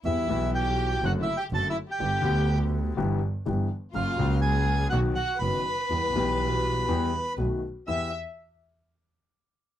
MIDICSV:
0, 0, Header, 1, 5, 480
1, 0, Start_track
1, 0, Key_signature, 1, "minor"
1, 0, Tempo, 487805
1, 45, Time_signature, 4, 2, 24, 8
1, 5805, Tempo, 495050
1, 9584, End_track
2, 0, Start_track
2, 0, Title_t, "Bandoneon"
2, 0, Program_c, 0, 23
2, 51, Note_on_c, 0, 76, 53
2, 498, Note_off_c, 0, 76, 0
2, 540, Note_on_c, 0, 79, 59
2, 1031, Note_off_c, 0, 79, 0
2, 1032, Note_on_c, 0, 78, 59
2, 1100, Note_off_c, 0, 78, 0
2, 1206, Note_on_c, 0, 76, 62
2, 1348, Note_on_c, 0, 79, 63
2, 1353, Note_off_c, 0, 76, 0
2, 1417, Note_off_c, 0, 79, 0
2, 1518, Note_on_c, 0, 81, 70
2, 1654, Note_off_c, 0, 81, 0
2, 1672, Note_on_c, 0, 76, 56
2, 1739, Note_off_c, 0, 76, 0
2, 1882, Note_on_c, 0, 79, 58
2, 2544, Note_off_c, 0, 79, 0
2, 3887, Note_on_c, 0, 77, 58
2, 4331, Note_off_c, 0, 77, 0
2, 4345, Note_on_c, 0, 80, 65
2, 4798, Note_off_c, 0, 80, 0
2, 4818, Note_on_c, 0, 78, 58
2, 4895, Note_off_c, 0, 78, 0
2, 5069, Note_on_c, 0, 78, 71
2, 5298, Note_off_c, 0, 78, 0
2, 5303, Note_on_c, 0, 83, 73
2, 7196, Note_off_c, 0, 83, 0
2, 7721, Note_on_c, 0, 88, 54
2, 7947, Note_off_c, 0, 88, 0
2, 9584, End_track
3, 0, Start_track
3, 0, Title_t, "Violin section"
3, 0, Program_c, 1, 48
3, 49, Note_on_c, 1, 64, 46
3, 497, Note_off_c, 1, 64, 0
3, 544, Note_on_c, 1, 67, 52
3, 985, Note_off_c, 1, 67, 0
3, 1033, Note_on_c, 1, 66, 49
3, 1100, Note_off_c, 1, 66, 0
3, 1187, Note_on_c, 1, 64, 54
3, 1328, Note_off_c, 1, 64, 0
3, 1362, Note_on_c, 1, 67, 53
3, 1427, Note_off_c, 1, 67, 0
3, 1511, Note_on_c, 1, 69, 54
3, 1650, Note_off_c, 1, 69, 0
3, 1668, Note_on_c, 1, 64, 52
3, 1736, Note_off_c, 1, 64, 0
3, 1861, Note_on_c, 1, 67, 54
3, 2534, Note_off_c, 1, 67, 0
3, 3868, Note_on_c, 1, 65, 54
3, 4321, Note_off_c, 1, 65, 0
3, 4352, Note_on_c, 1, 68, 54
3, 4803, Note_off_c, 1, 68, 0
3, 4837, Note_on_c, 1, 66, 59
3, 4910, Note_off_c, 1, 66, 0
3, 5077, Note_on_c, 1, 66, 55
3, 5303, Note_off_c, 1, 66, 0
3, 5315, Note_on_c, 1, 71, 62
3, 7202, Note_off_c, 1, 71, 0
3, 7730, Note_on_c, 1, 76, 57
3, 7952, Note_off_c, 1, 76, 0
3, 9584, End_track
4, 0, Start_track
4, 0, Title_t, "Grand piano"
4, 0, Program_c, 2, 0
4, 45, Note_on_c, 2, 52, 41
4, 46, Note_on_c, 2, 55, 31
4, 51, Note_on_c, 2, 59, 33
4, 53, Note_on_c, 2, 40, 43
4, 53, Note_on_c, 2, 67, 35
4, 249, Note_off_c, 2, 55, 0
4, 252, Note_off_c, 2, 52, 0
4, 252, Note_off_c, 2, 59, 0
4, 253, Note_off_c, 2, 40, 0
4, 253, Note_off_c, 2, 67, 0
4, 272, Note_on_c, 2, 52, 50
4, 279, Note_on_c, 2, 55, 50
4, 288, Note_on_c, 2, 47, 62
4, 289, Note_on_c, 2, 35, 64
4, 297, Note_on_c, 2, 59, 50
4, 310, Note_on_c, 2, 67, 55
4, 967, Note_off_c, 2, 52, 0
4, 971, Note_off_c, 2, 55, 0
4, 975, Note_off_c, 2, 35, 0
4, 975, Note_off_c, 2, 47, 0
4, 979, Note_off_c, 2, 59, 0
4, 986, Note_off_c, 2, 67, 0
4, 1022, Note_on_c, 2, 42, 60
4, 1022, Note_on_c, 2, 66, 56
4, 1024, Note_on_c, 2, 50, 52
4, 1024, Note_on_c, 2, 54, 64
4, 1025, Note_on_c, 2, 57, 52
4, 1219, Note_off_c, 2, 42, 0
4, 1219, Note_off_c, 2, 66, 0
4, 1220, Note_off_c, 2, 50, 0
4, 1220, Note_off_c, 2, 54, 0
4, 1220, Note_off_c, 2, 57, 0
4, 1497, Note_on_c, 2, 42, 42
4, 1497, Note_on_c, 2, 50, 36
4, 1497, Note_on_c, 2, 54, 44
4, 1500, Note_on_c, 2, 57, 32
4, 1501, Note_on_c, 2, 66, 37
4, 1695, Note_off_c, 2, 42, 0
4, 1695, Note_off_c, 2, 50, 0
4, 1697, Note_off_c, 2, 54, 0
4, 1697, Note_off_c, 2, 57, 0
4, 1697, Note_off_c, 2, 66, 0
4, 1967, Note_on_c, 2, 50, 40
4, 1968, Note_on_c, 2, 55, 35
4, 1969, Note_on_c, 2, 43, 41
4, 1970, Note_on_c, 2, 31, 42
4, 1973, Note_on_c, 2, 59, 34
4, 1979, Note_on_c, 2, 67, 42
4, 2166, Note_off_c, 2, 50, 0
4, 2170, Note_off_c, 2, 55, 0
4, 2171, Note_off_c, 2, 31, 0
4, 2171, Note_off_c, 2, 43, 0
4, 2173, Note_off_c, 2, 59, 0
4, 2176, Note_off_c, 2, 67, 0
4, 2181, Note_on_c, 2, 50, 69
4, 2199, Note_on_c, 2, 38, 64
4, 2202, Note_on_c, 2, 55, 47
4, 2209, Note_on_c, 2, 59, 53
4, 2223, Note_on_c, 2, 67, 65
4, 2886, Note_off_c, 2, 38, 0
4, 2886, Note_off_c, 2, 50, 0
4, 2887, Note_off_c, 2, 55, 0
4, 2891, Note_off_c, 2, 59, 0
4, 2898, Note_off_c, 2, 67, 0
4, 2918, Note_on_c, 2, 52, 57
4, 2922, Note_on_c, 2, 55, 52
4, 2922, Note_on_c, 2, 67, 64
4, 2926, Note_on_c, 2, 59, 49
4, 2927, Note_on_c, 2, 31, 67
4, 2928, Note_on_c, 2, 43, 67
4, 3123, Note_off_c, 2, 52, 0
4, 3125, Note_off_c, 2, 55, 0
4, 3125, Note_off_c, 2, 67, 0
4, 3127, Note_off_c, 2, 59, 0
4, 3128, Note_off_c, 2, 31, 0
4, 3128, Note_off_c, 2, 43, 0
4, 3399, Note_on_c, 2, 52, 39
4, 3404, Note_on_c, 2, 59, 31
4, 3406, Note_on_c, 2, 31, 42
4, 3408, Note_on_c, 2, 55, 37
4, 3411, Note_on_c, 2, 67, 44
4, 3412, Note_on_c, 2, 43, 43
4, 3602, Note_off_c, 2, 52, 0
4, 3605, Note_off_c, 2, 31, 0
4, 3605, Note_off_c, 2, 59, 0
4, 3606, Note_off_c, 2, 55, 0
4, 3608, Note_off_c, 2, 43, 0
4, 3608, Note_off_c, 2, 67, 0
4, 3876, Note_on_c, 2, 49, 39
4, 3879, Note_on_c, 2, 42, 46
4, 3879, Note_on_c, 2, 58, 37
4, 3879, Note_on_c, 2, 66, 39
4, 3880, Note_on_c, 2, 54, 43
4, 4081, Note_off_c, 2, 49, 0
4, 4082, Note_off_c, 2, 42, 0
4, 4082, Note_off_c, 2, 58, 0
4, 4082, Note_off_c, 2, 66, 0
4, 4083, Note_off_c, 2, 54, 0
4, 4103, Note_on_c, 2, 49, 59
4, 4117, Note_off_c, 2, 49, 0
4, 4118, Note_on_c, 2, 54, 51
4, 4124, Note_on_c, 2, 37, 75
4, 4126, Note_on_c, 2, 49, 70
4, 4131, Note_on_c, 2, 58, 57
4, 4143, Note_on_c, 2, 66, 62
4, 4804, Note_off_c, 2, 54, 0
4, 4806, Note_off_c, 2, 37, 0
4, 4808, Note_off_c, 2, 49, 0
4, 4810, Note_off_c, 2, 58, 0
4, 4816, Note_off_c, 2, 66, 0
4, 4837, Note_on_c, 2, 54, 52
4, 4841, Note_on_c, 2, 51, 62
4, 4843, Note_on_c, 2, 35, 69
4, 4845, Note_on_c, 2, 47, 70
4, 4845, Note_on_c, 2, 59, 52
4, 4848, Note_on_c, 2, 66, 58
4, 5040, Note_off_c, 2, 54, 0
4, 5042, Note_off_c, 2, 51, 0
4, 5044, Note_off_c, 2, 35, 0
4, 5044, Note_off_c, 2, 59, 0
4, 5045, Note_off_c, 2, 47, 0
4, 5046, Note_off_c, 2, 66, 0
4, 5322, Note_on_c, 2, 30, 46
4, 5323, Note_on_c, 2, 51, 35
4, 5324, Note_on_c, 2, 42, 44
4, 5324, Note_on_c, 2, 54, 35
4, 5328, Note_on_c, 2, 59, 32
4, 5331, Note_on_c, 2, 66, 42
4, 5524, Note_off_c, 2, 30, 0
4, 5525, Note_off_c, 2, 42, 0
4, 5525, Note_off_c, 2, 51, 0
4, 5525, Note_off_c, 2, 54, 0
4, 5527, Note_off_c, 2, 59, 0
4, 5529, Note_off_c, 2, 66, 0
4, 5805, Note_on_c, 2, 55, 35
4, 5806, Note_on_c, 2, 52, 43
4, 5811, Note_on_c, 2, 40, 46
4, 5811, Note_on_c, 2, 59, 35
4, 5813, Note_on_c, 2, 67, 39
4, 6004, Note_off_c, 2, 55, 0
4, 6006, Note_off_c, 2, 52, 0
4, 6007, Note_off_c, 2, 40, 0
4, 6007, Note_off_c, 2, 59, 0
4, 6008, Note_off_c, 2, 67, 0
4, 6029, Note_on_c, 2, 52, 54
4, 6052, Note_on_c, 2, 47, 61
4, 6052, Note_on_c, 2, 55, 57
4, 6055, Note_on_c, 2, 35, 66
4, 6059, Note_on_c, 2, 59, 47
4, 6073, Note_on_c, 2, 67, 62
4, 6717, Note_off_c, 2, 52, 0
4, 6728, Note_off_c, 2, 47, 0
4, 6728, Note_off_c, 2, 55, 0
4, 6730, Note_off_c, 2, 35, 0
4, 6732, Note_off_c, 2, 59, 0
4, 6739, Note_off_c, 2, 67, 0
4, 6761, Note_on_c, 2, 52, 66
4, 6762, Note_on_c, 2, 40, 71
4, 6764, Note_on_c, 2, 55, 50
4, 6764, Note_on_c, 2, 67, 63
4, 6766, Note_on_c, 2, 59, 51
4, 6963, Note_off_c, 2, 40, 0
4, 6964, Note_off_c, 2, 55, 0
4, 6965, Note_off_c, 2, 59, 0
4, 6965, Note_off_c, 2, 67, 0
4, 6966, Note_off_c, 2, 52, 0
4, 7236, Note_on_c, 2, 51, 33
4, 7236, Note_on_c, 2, 59, 30
4, 7237, Note_on_c, 2, 47, 46
4, 7237, Note_on_c, 2, 57, 33
4, 7239, Note_on_c, 2, 35, 42
4, 7240, Note_on_c, 2, 66, 39
4, 7444, Note_off_c, 2, 47, 0
4, 7444, Note_off_c, 2, 51, 0
4, 7444, Note_off_c, 2, 57, 0
4, 7444, Note_off_c, 2, 59, 0
4, 7445, Note_off_c, 2, 35, 0
4, 7446, Note_off_c, 2, 66, 0
4, 7721, Note_on_c, 2, 40, 40
4, 7724, Note_on_c, 2, 64, 37
4, 7727, Note_on_c, 2, 67, 44
4, 7728, Note_on_c, 2, 59, 37
4, 7924, Note_off_c, 2, 40, 0
4, 7926, Note_off_c, 2, 64, 0
4, 7928, Note_off_c, 2, 59, 0
4, 7928, Note_off_c, 2, 67, 0
4, 9584, End_track
5, 0, Start_track
5, 0, Title_t, "Double bass"
5, 0, Program_c, 3, 43
5, 44, Note_on_c, 3, 40, 41
5, 249, Note_off_c, 3, 40, 0
5, 290, Note_on_c, 3, 35, 66
5, 976, Note_off_c, 3, 35, 0
5, 1005, Note_on_c, 3, 30, 67
5, 1210, Note_off_c, 3, 30, 0
5, 1486, Note_on_c, 3, 30, 39
5, 1690, Note_off_c, 3, 30, 0
5, 1970, Note_on_c, 3, 31, 44
5, 2171, Note_off_c, 3, 31, 0
5, 2214, Note_on_c, 3, 38, 66
5, 2894, Note_off_c, 3, 38, 0
5, 2927, Note_on_c, 3, 31, 72
5, 3128, Note_off_c, 3, 31, 0
5, 3420, Note_on_c, 3, 31, 47
5, 3612, Note_off_c, 3, 31, 0
5, 3888, Note_on_c, 3, 30, 40
5, 4087, Note_off_c, 3, 30, 0
5, 4125, Note_on_c, 3, 37, 76
5, 4807, Note_off_c, 3, 37, 0
5, 4846, Note_on_c, 3, 35, 66
5, 5045, Note_off_c, 3, 35, 0
5, 5323, Note_on_c, 3, 30, 44
5, 5524, Note_off_c, 3, 30, 0
5, 5805, Note_on_c, 3, 40, 46
5, 6004, Note_off_c, 3, 40, 0
5, 6034, Note_on_c, 3, 35, 71
5, 6719, Note_off_c, 3, 35, 0
5, 6758, Note_on_c, 3, 40, 66
5, 6961, Note_off_c, 3, 40, 0
5, 7236, Note_on_c, 3, 35, 46
5, 7444, Note_off_c, 3, 35, 0
5, 7732, Note_on_c, 3, 40, 37
5, 7930, Note_off_c, 3, 40, 0
5, 9584, End_track
0, 0, End_of_file